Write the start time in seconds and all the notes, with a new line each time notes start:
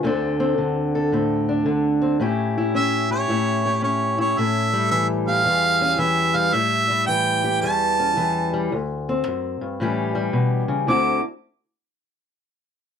0.03 D2 D3 C4 D4 A4
0.40 C4
0.58 D3
0.95 A4
1.12 A2 C4
1.49 D4
1.66 D3
2.02 C4
2.20 A2 C#4 E4 G4
2.58 E4
2.75 C#4 E5
3.11 G4 C#5
3.29 A2 E4
3.66 G4
3.82 C#4 C#5
4.18 E4 C#5
4.38 A2 E5
4.73 G3
4.91 E3 E5
5.28 G4 F5
5.45 E2 G3
5.81 C#4
5.98 E3 E5
6.35 G3 F5
6.53 A2 E5
6.90 G3
7.07 E3 G5
7.44 G4
7.61 E2 G3 A5
8.00 C#4
8.17 E3
8.54 G3
8.72 D2
9.09 C4
9.27 F#2
9.61 G2
9.80 A2 E3 G3 C#4 G4
10.15 G3
10.33 B2
10.68 C#3
10.87 D2 D3 C4 E4 F#4 D6